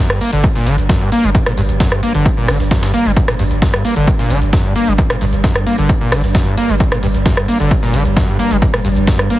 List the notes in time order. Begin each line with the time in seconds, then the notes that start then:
Already playing: G2
0.00 F#2
0.10 G1 G2, cross-stick
0.21 A#3, open hi-hat, shaker
0.33 G1 D3, closed hi-hat, shaker
0.44 G2, kick, closed hi-hat, shaker
0.55 G1 A#2, snare
0.67 G1 D3, closed hi-hat, open hi-hat, shaker
0.78 G1, closed hi-hat, shaker
0.89 F#2, kick, snare, closed hi-hat, shaker
1.01 G1 G2
1.12 A#3, closed hi-hat, open hi-hat, shaker
1.24 G1 G3, closed hi-hat, shaker
1.35 G2, kick, closed hi-hat, shaker
1.46 G1 A#2, cross-stick, open hi-hat
1.57 G1 G2, closed hi-hat, open hi-hat, shaker
1.69 G1, closed hi-hat, shaker
1.80 F#2, kick, snare, closed hi-hat, shaker
1.92 G1 G2, cross-stick
2.03 A#3, closed hi-hat, open hi-hat, shaker
2.15 G1 D3, closed hi-hat, shaker
2.26 G2, kick, closed hi-hat, shaker
2.37 G1 A#2
2.48 G1 D3, cross-stick, snare, closed hi-hat, open hi-hat, shaker
2.60 G1, snare, closed hi-hat, shaker
2.71 F#2, kick, snare, closed hi-hat, shaker
2.83 G1 G2, snare, closed hi-hat
2.94 A#3, closed hi-hat, open hi-hat, shaker
3.05 G1 G3, open hi-hat, shaker
3.17 G2, kick, closed hi-hat, shaker
3.28 G1 A#2, cross-stick, closed hi-hat, open hi-hat
3.39 G1 G2, closed hi-hat, open hi-hat, shaker
3.51 G1, closed hi-hat, shaker
3.62 F#2, kick, snare, closed hi-hat, shaker
3.74 G1 G2, cross-stick
3.85 A#3, open hi-hat, shaker
3.96 G1 D3, closed hi-hat, shaker
4.07 G2, kick, closed hi-hat, shaker
4.19 G1 A#2, snare
4.30 G1 D3, closed hi-hat, open hi-hat, shaker
4.42 G1, closed hi-hat, shaker
4.53 F#2, kick, snare, closed hi-hat, shaker
4.64 G1 G2
4.76 A#3, closed hi-hat, open hi-hat, shaker
4.87 G1 G3, closed hi-hat, shaker
4.98 G2, kick, closed hi-hat, shaker
5.10 G1 A#2, cross-stick, open hi-hat
5.21 G1 G2, closed hi-hat, open hi-hat, shaker
5.33 G1, closed hi-hat, shaker
5.44 F#2, kick, snare, closed hi-hat, shaker
5.55 G1 G2, cross-stick
5.67 A#3, closed hi-hat, open hi-hat, shaker
5.78 G1 D3, closed hi-hat, shaker
5.89 G2, kick, closed hi-hat, shaker
6.01 G1 A#2
6.12 G1 D3, cross-stick, snare, closed hi-hat, open hi-hat, shaker
6.24 G1, snare, closed hi-hat, shaker
6.35 F#2, kick, snare, closed hi-hat, shaker
6.46 G1 G2
6.57 A#3, closed hi-hat, open hi-hat, shaker
6.69 G1 G3, open hi-hat, shaker
6.80 G2, kick, closed hi-hat, shaker
6.92 G1 A#2, cross-stick, closed hi-hat, open hi-hat
7.03 G1 G2, closed hi-hat, open hi-hat, shaker
7.15 G1, closed hi-hat, shaker
7.25 F#2, kick, snare, closed hi-hat, shaker
7.37 G1 G2, cross-stick
7.48 A#3, open hi-hat, shaker
7.60 G1 D3, closed hi-hat, shaker
7.71 G2, kick, closed hi-hat, shaker
7.83 G1 A#2, snare
7.94 G1 D3, closed hi-hat, open hi-hat, shaker
8.05 G1, closed hi-hat, shaker
8.17 F#2, kick, snare, closed hi-hat, shaker
8.28 G1 G2
8.39 A#3, closed hi-hat, open hi-hat, shaker
8.51 G1 G3, closed hi-hat, shaker
8.62 G2, kick, closed hi-hat, shaker
8.74 G1 A#2, cross-stick, open hi-hat
8.85 G1 G2, closed hi-hat, open hi-hat, shaker
8.96 G1, closed hi-hat, shaker
9.07 F#2, kick, snare, closed hi-hat, shaker
9.19 G1 G2, cross-stick
9.30 A#3, closed hi-hat, open hi-hat, shaker